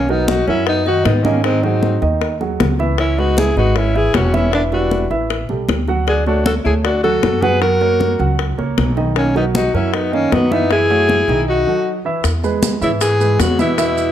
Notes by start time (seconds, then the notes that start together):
Already playing: B1 A#3 C#4
0.09 F#3 B3 D#4 F#4 A#4, high conga
0.28 D#4 F#4, high bongo, high conga
0.47 F#2 F#3 C#4 E4 F#4 A#4, high conga
0.66 B3 D#4, high bongo, high conga
0.85 D#3 D#4 F#4 D#5, high conga
1.04 G#2 B3 D#4, high bongo, low bongo, high conga
1.24 D#3 A#3 C#4 D#4 D#5, high conga
1.43 D#3 G#3 C4 D#4 D#5, high bongo, high conga
1.62 F#3 C4 D#4 F#4 G#4, high bongo, high conga
1.83 high bongo, high conga
2.02 D#2 D#3 D#4 D#5, high bongo, high conga
2.21 high bongo, high conga
2.41 F#3 F#4 G#4, high conga
2.60 C#2, high bongo, low bongo, high conga
2.79 E3 E4 E5, high bongo, high conga
2.98 C#4 E4, high bongo, high conga
3.18 G#3 D#4 F#4 G#4 B4, high conga
3.37 E4 G#4, high bongo, high conga
3.56 G#1 G#3 D#4 F#4 G#4 B4, high conga
3.76 C#4 E4, high bongo, high conga
3.95 E3 E4 G#4 E5, high conga
4.14 E1 C#4 F#4, high bongo, low bongo, high conga
4.33 E3 C#4 E4 E5, high conga
4.53 E3 B3 D4 E4 E5, high bongo, high conga
4.72 G3 D4 E4 F#4 B4, high bongo, high conga
4.91 high bongo, high conga
5.10 A1 E3 E4 E5, high bongo, high conga
5.30 high bongo, high conga
5.49 B1 G3 G4 A4, high conga
5.69 D2, high bongo, low bongo, high conga
5.88 F#3 F#4 F#5, high bongo, high conga
6.07 D4 G#4, high bongo, high conga
6.26 A3 D4 F#4 A4 C#5, high conga
6.46 F#4 A4, high bongo, high conga
6.64 D2 A3 E4 G#4 A4 C#5, high conga
6.84 D4 F#4, high bongo, high conga
7.03 F#3 F#4 A4 F#5, high conga
7.23 F#2, high bongo, low bongo, high conga
7.42 F#3 F#4 G#4 B4 F#5, high conga
7.61 F#3 F#4 A#4 F#5, high bongo, high conga
7.81 A#3 A#4 C#5, high bongo, high conga
8.00 high bongo, high conga
8.19 C#2 F#3 F#4 F#5, high bongo, high conga
8.39 high bongo, high conga
8.58 C#2 A#3 A#4 C#5, high conga
8.78 B1, high bongo, low bongo, high conga
8.97 D#3 D#4 D#5, high bongo, high conga
9.16 A#3 C#4, high bongo, high conga
9.35 F#3 B3 D#4 F#4 A#4, high conga
9.55 D#4 F#4, high bongo, high conga
9.74 F#2 F#3 C#4 E4 F#4 A#4, high conga
9.93 B3 D#4, high bongo, high conga
10.13 D#3 A#3 C#4 D#4 D#5, high conga
10.32 F#2 F#3 B3, high bongo, low bongo, high conga
10.51 E3 B3 D#4 E4 E5, high conga
10.71 E3 E4 G#4 E5, high bongo, high conga
10.90 A3 F#4 C#5, high bongo, high conga
11.09 high bongo, high conga
11.28 B1 D#3 D#4 D#5, high bongo, high conga
11.48 D#4 F#4
11.67 F#3 F#4 A4
12.05 E3 E4 E5
12.24 E2, high bongo, high conga, maracas
12.43 G#3 G#4 B4, high conga, maracas
12.62 high bongo, high conga, maracas
12.81 G#2 C#3 E3 E4 E5, high conga, maracas
13.01 E3 G#4, high bongo, high conga, maracas
13.20 G#3 G#4 B4, high conga, maracas
13.39 E2 C#3 F#4, high bongo, low bongo, high conga, maracas
13.59 B2 E3 E4 E5, high conga, maracas
13.78 E3 E4 E5, high bongo, high conga, maracas
13.97 high bongo, high conga, maracas